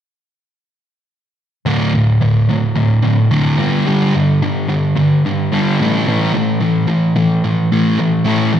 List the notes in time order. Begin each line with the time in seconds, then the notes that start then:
1.66 D2 A2 D3
1.94 D2 A2
2.21 D2 A2
2.49 D2 A2
2.75 D2 A2
3.03 D2 A2
3.31 D2 A2 D3
3.58 G2 D3 G3
3.86 G2 D3 G3
4.15 G2 D3
4.42 G2 D3
4.69 G2 D3
4.96 G2 D3
5.25 G2 D3
5.52 G2 D3 G3
5.80 A2 E3 A3
6.07 A2 E3 A3
6.34 A2 E3
6.61 A2 E3
6.88 A2 E3
7.16 A2 E3
7.44 A2 E3
7.72 A2 E3 A3
7.99 A2 E3
8.26 A2 E3 A3
8.54 A2 E3